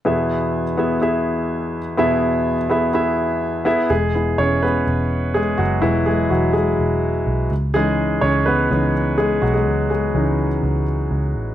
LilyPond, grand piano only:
<<
  \new Staff \with { instrumentName = "Grand piano" } { \time 4/4 \key e \major \tempo 4 = 125 <b e' gis' e''>4 r8 <b e' gis' e''>8 <b e' gis' e''>4. r8 | <b e' gis' e''>4 r8 <b e' gis' e''>8 <b e' gis' e''>4. <b e' gis' e''>8 | <gis gis'>4 <cis' cis''>8 <b b'>4. <gis gis'>8 <fis fis'>8 | <e e'>8 <gis gis'>8 <fis fis'>8 <gis gis'>2 r8 |
<gis gis'>4 <cis' cis''>8 <b b'>4. <gis gis'>8 <fis fis'>16 <gis gis'>16~ | <gis gis'>8 <gis gis'>2 r4. | }
  \new Staff \with { instrumentName = "Grand piano" } { \time 4/4 \key e \major <e, b,>1 | <e, b,>2.~ <e, b,>8 r8 | r8 <gis b e'>4. r2 | <gis b>4. r2 r8 |
<e cis' dis'>2 <e cis' dis'>8 r4. | r4 <e cis' dis'>8 r2 r8 | }
>>